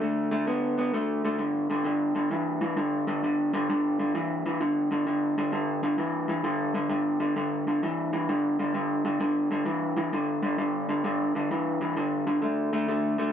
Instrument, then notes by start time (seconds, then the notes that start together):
clean electric guitar
0.01 D3 A3
0.31 D3 A3
0.47 D3 B3
0.78 D3 B3
0.93 D3 A3
1.25 D3 A3
1.39 G2 D3
1.70 G2 D3
1.85 G2 D3
2.15 G2 D3
2.31 G2 E3
2.61 G2 E3
2.77 G2 D3
3.07 G2 D3
3.23 G2 D3
3.54 G2 D3
3.70 G2 D3
3.99 G2 D3
4.15 G2 E3
4.46 G2 E3
4.61 G2 D3
4.91 G2 D3
5.07 G2 D3
5.38 G2 D3
5.52 G2 D3
5.83 G2 D3
5.98 G2 E3
6.28 G2 E3
6.44 G2 D3
6.74 G2 D3
6.90 G2 D3
7.20 G2 D3
7.36 G2 D3
7.67 G2 D3
7.83 G2 E3
8.13 G2 E3
8.29 G2 D3
8.59 G2 D3
8.74 G2 D3
9.05 G2 D3
9.20 G2 D3
9.51 G2 D3
9.65 G2 E3
9.97 G2 E3
10.13 G2 D3
10.43 G2 D3
10.58 G2 D3
10.89 G2 D3
11.04 G2 D3
11.35 G2 D3
11.51 G2 E3
11.81 G2 E3
11.96 G2 D3
12.27 G2 D3
12.42 D3 A3
12.73 D3 A3
12.88 D3 A3
13.18 D3 A3